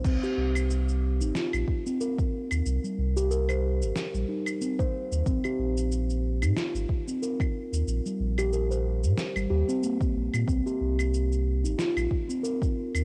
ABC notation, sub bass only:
X:1
M:4/4
L:1/16
Q:"Swing 16ths" 1/4=92
K:Cm
V:1 name="Sub bass" clef=bass
C,, z C,,4- C,, G,,, z B,,, z4 z E,, | C,, z C,,4- C,, G,,, z B,,, z4 z E,, | B,,, z B,,,4- B,,, B,, z A,,, z4 z E,, | B,,, z B,,,4- B,,, B,, z A,,, E,, z3 B,,, B,, |
C,, z C,,4- C,, G,,, z B,,, z4 z E,, |]